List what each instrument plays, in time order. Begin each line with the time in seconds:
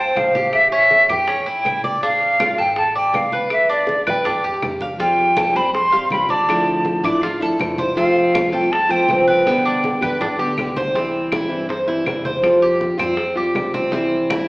Already playing: upright bass C2, cuban tres C5
0.00 flute G5
0.16 upright bass A1, flute F5, high bongo, low bongo, high conga, claves
0.35 cuban tres G4, high bongo, high conga
0.53 flute E5, high bongo, high conga, claves
0.72 cuban tres C#4, flute E5, high bongo, high conga
0.91 high bongo, high conga
1.08 upright bass E2, cuban tres G4, flute G5, high bongo, high conga, low conga, claves
1.27 cuban tres C#4, high bongo, high conga
1.46 upright bass B1, cuban tres E4, high conga
1.65 upright bass A1, high bongo, low bongo, high conga, claves
1.84 cuban tres D5, high bongo, high conga
2.03 cuban tres D4, flute F5, high bongo, high conga
2.21 high bongo, high conga
2.40 cuban tres F4, high bongo, high conga, claves
2.58 upright bass A1, cuban tres A4, flute G5, high bongo, high conga
2.76 flute A5, high bongo, high conga
2.95 cuban tres D5, flute G5, high conga
3.13 upright bass G1, flute F5, high bongo, low bongo, high conga, claves
3.32 cuban tres B4, high bongo, high conga
3.50 flute E5, high bongo, high conga, claves
3.69 cuban tres D4, flute D5, high bongo, high conga
3.87 high bongo, high conga
4.06 upright bass D2, cuban tres B4, flute G5, high bongo, high conga, low conga, claves
4.25 cuban tres D4, high bongo, high conga, low conga
4.44 upright bass E2, cuban tres G4, high conga
4.62 upright bass F2, high bongo, low bongo, high conga, claves
4.81 cuban tres F5, high bongo, high conga
4.98 nylon-string guitar F3 G3 C4 G4, cuban tres F4, flute G5, high bongo, high conga
5.19 high bongo, high conga
5.37 cuban tres A4, high bongo, high conga, claves
5.55 upright bass F2, nylon-string guitar G3 C4 G4, cuban tres C5, flute B5, high bongo, high conga
5.74 flute C6, muted nylon-string guitar stroke, high bongo, high conga
5.92 nylon-string guitar G3 C4 G4, cuban tres F5, high conga
6.10 upright bass D2, nylon-string guitar F3 G3 C4 G4, flute B5, high bongo, low bongo, high conga, claves
6.29 cuban tres D5, flute A5, high bongo, high conga
6.47 nylon-string guitar D3 F3 A3 D4 E4, high bongo, high conga, claves
6.66 high bongo, high conga
6.85 high bongo, high conga
7.04 upright bass A1, nylon-string guitar F3 A3 D4 E4, cuban tres D5, high bongo, high conga, low conga, claves
7.22 cuban tres F4, muted nylon-string guitar stroke, high bongo, high conga
7.40 upright bass G1, nylon-string guitar F3 A3 D4 E4, cuban tres A4, high conga
7.59 upright bass F1, nylon-string guitar F3 A3 D4 E4, high bongo, low bongo, high conga, claves
7.78 cuban tres C5, high bongo, high conga
7.95 nylon-string guitar C3 F3 A3 C4 F4, cuban tres C4, flute F5, high bongo, high conga
8.16 high bongo, high conga
8.35 cuban tres F4, high bongo, high conga, claves
8.52 upright bass C2, nylon-string guitar F3 A3 C4 F4, cuban tres A4, flute G5, high conga
8.72 flute A5, muted nylon-string guitar stroke, high bongo, high conga
8.89 nylon-string guitar F3 A3 C4 F4, cuban tres C5, flute G5, high conga
9.08 upright bass G1, nylon-string guitar F3 A3 C4 F4, high bongo, low bongo, high conga, claves
9.27 cuban tres B4, flute G5, high bongo, high conga
9.46 nylon-string guitar B2 D3 G3 B3 G4, high bongo, high conga, claves
9.65 cuban tres D4, high bongo, high conga
9.84 high bongo, high conga
10.01 upright bass D2, nylon-string guitar D3 G3 B3 G4, cuban tres B4, high conga, low conga, claves
10.21 cuban tres D4, muted nylon-string guitar stroke, high bongo, high conga, low conga
10.39 upright bass D2, nylon-string guitar D3 G3 B3 G4, cuban tres G4, high conga
10.57 upright bass C2, nylon-string guitar D3 G3 B3 G4, high bongo, low bongo, high conga, claves
10.76 cuban tres C5, high bongo, high conga
10.94 nylon-string guitar C3 E3 G3 C4 E4, cuban tres C4, high bongo, high conga
11.14 high bongo, high conga
11.32 cuban tres E4, high bongo, high conga, claves
11.49 upright bass G2, nylon-string guitar E3 G3 C4 E4, high bongo, high conga
11.69 cuban tres C5, muted nylon-string guitar stroke, high bongo, high conga
11.87 nylon-string guitar E3 G3 C4 E4, cuban tres E4, high conga
12.06 upright bass F2, nylon-string guitar E3 G3 C4 E4, high bongo, low bongo, high conga, claves
12.25 cuban tres C5, high bongo, high conga
12.42 nylon-string guitar F3 G3 C4 F4, high bongo, high conga, claves
12.62 cuban tres G4, high bongo, high conga
12.81 high bongo, high conga
12.98 upright bass F2, nylon-string guitar G3 C4 F4, cuban tres C4, high bongo, high conga, low conga, claves
13.17 muted nylon-string guitar stroke, high bongo, high conga
13.35 nylon-string guitar G3 C4 F4, cuban tres G4, high conga
13.55 upright bass C2, nylon-string guitar F3 G3 C4 F4, high bongo, low bongo, high conga, claves
13.74 cuban tres C4, high bongo, high conga
13.91 nylon-string guitar C3 E3 G3 C4 E4, cuban tres C4, high bongo, high conga
14.12 high bongo, high conga
14.30 cuban tres E4, high bongo, high conga, claves